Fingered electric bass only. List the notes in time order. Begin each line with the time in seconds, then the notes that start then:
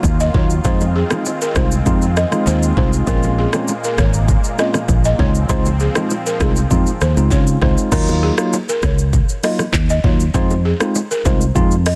0.04 D#2
0.34 D#2
0.65 F2
1.56 C2
1.86 F2
2.47 D#2
2.77 C2
3.07 A#1
3.98 G#1
4.89 A#1
5.19 C#2
5.49 C#2
6.41 C2
6.71 F2
7.01 D#2
7.17 C#2
7.31 C#3
7.62 C#2
7.92 D#2
8.83 C#2
9.74 D#2
10.04 D#2
10.34 F2
11.25 C2
11.56 F2